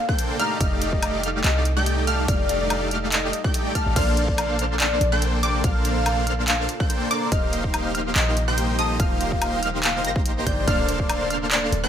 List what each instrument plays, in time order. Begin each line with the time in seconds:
Already playing: analog synth pad C3 A#3 D4 A4
0.09 supersaw synth A#3 D4 A4 C5 G5, synth pluck G6, kick
0.19 closed hi-hat
0.39 analog synth pad G3 D#4, supersaw synth A3 D#4 G4 D5 F5, soft synth lead A#5, synth pluck F6, closed hi-hat
0.60 808-style bass F1, supersaw synth A3 D#4 G4 D5 F5, soft synth lead D#5, synth pluck F6, kick, closed hi-hat
0.82 closed hi-hat
0.93 soft synth lead D#5, kick
1.03 closed hi-hat, high woodblock
1.23 supersaw synth A3 D#4 G4 D5 F5, synth pluck F6, closed hi-hat
1.44 808-style bass C2, soft synth lead D#5, clap, closed hi-hat
1.65 closed hi-hat
1.77 supersaw synth A3 D#4 G4 D5 G5, synth pluck G6
1.86 closed hi-hat
2.07 supersaw synth A3 D#4 G4 D5 F5, soft synth lead A5, synth pluck F6, closed hi-hat
2.28 808-style bass F1, supersaw synth A3 D#4 G4 D5 F5, soft synth lead D5, synth pluck F6, kick, closed hi-hat
2.49 closed hi-hat
2.61 soft synth lead D5
2.70 closed hi-hat, high woodblock
2.91 supersaw synth A3 D#4 G4 D5 F5, synth pluck F6, closed hi-hat
3.12 soft synth lead D#5, clap, closed hi-hat
3.33 closed hi-hat
3.44 supersaw synth A3 D#4 G4 D5 G5, synth pluck G6, kick
3.54 closed hi-hat
3.75 supersaw synth A3 D#4 G4 D5 F5, soft synth lead A5, synth pluck F6, kick, closed hi-hat
3.86 808-style bass A1
3.96 808-style bass A#1, analog synth pad C3 A#3 D4, supersaw synth A#3 D4 A4 C5 F5, soft synth lead D5, synth pluck F6, kick, closed hi-hat, crash
4.17 closed hi-hat
4.28 soft synth lead D5, kick
4.38 closed hi-hat, high woodblock
4.59 supersaw synth A#3 D4 A4 C5 F5, synth pluck F6, closed hi-hat
4.80 soft synth lead D5, clap, closed hi-hat
5.01 808-style bass A#1, closed hi-hat
5.12 supersaw synth A#3 D4 A4 C5 G5, synth pluck G6
5.22 closed hi-hat
5.43 supersaw synth A#3 D4 A4 C5 D5, soft synth lead G5, synth pluck D6, closed hi-hat
5.64 808-style bass A#1, supersaw synth A#3 D4 A4 C5 F5, soft synth lead F5, synth pluck F6, kick, closed hi-hat
5.85 closed hi-hat
5.96 soft synth lead F5
6.06 closed hi-hat, high woodblock
6.27 supersaw synth A#3 D4 A4 C5 F5, synth pluck F6, closed hi-hat
6.48 soft synth lead F5, clap, closed hi-hat
6.69 closed hi-hat
6.80 supersaw synth A#3 D4 A4 C5 G5, synth pluck G6, kick
6.90 closed hi-hat
7.11 supersaw synth A#3 D4 A4 C5 D5, soft synth lead A#5, synth pluck D6, closed hi-hat
7.32 808-style bass D#1, analog synth pad C3 F3 G3 D#4, supersaw synth A#3 D#4 G4 C5 F5, soft synth lead D#5, synth pluck F6, kick, closed hi-hat
7.53 closed hi-hat
7.64 soft synth lead D#5, kick
7.74 closed hi-hat, high woodblock
7.95 supersaw synth A#3 D#4 G4 C5 F5, synth pluck F6, closed hi-hat
8.16 808-style bass A#1, soft synth lead D#5, clap, closed hi-hat
8.37 closed hi-hat
8.48 supersaw synth A#3 D#4 G4 C5 G5, synth pluck G6
8.58 closed hi-hat
8.79 supersaw synth A#3 D#4 G4 C5 D#5, soft synth lead A5, synth pluck D#6, closed hi-hat
9.00 808-style bass D#1, supersaw synth A#3 D#4 G4 C5 F5, soft synth lead F5, synth pluck F6, kick, closed hi-hat
9.21 closed hi-hat
9.32 soft synth lead F5, kick
9.42 closed hi-hat, high woodblock
9.63 supersaw synth A#3 D#4 G4 C5 F5, synth pluck F6, closed hi-hat
9.84 soft synth lead F5, clap, closed hi-hat
10.05 808-style bass G1, supersaw synth A#3 D#4 G4 C5 A#5, synth pluck A#6, closed hi-hat
10.16 kick
10.26 closed hi-hat
10.46 808-style bass G1, supersaw synth A#3 D#4 G4 C5 G5, soft synth lead D5, synth pluck G6, kick, closed hi-hat
10.67 808-style bass D1, supersaw synth A#3 D4 A4 C5 F5, analog synth pad A#3 D4 A4, soft synth lead D5, synth pluck F6, kick, closed hi-hat
10.89 closed hi-hat
11.00 soft synth lead D5, kick
11.10 closed hi-hat, high woodblock
11.30 supersaw synth A#3 D4 A4 C5 F5, synth pluck F6, closed hi-hat
11.51 soft synth lead D5, clap, closed hi-hat
11.72 808-style bass D1, closed hi-hat
11.84 supersaw synth A#3 D4 A4 C5 G5, synth pluck G6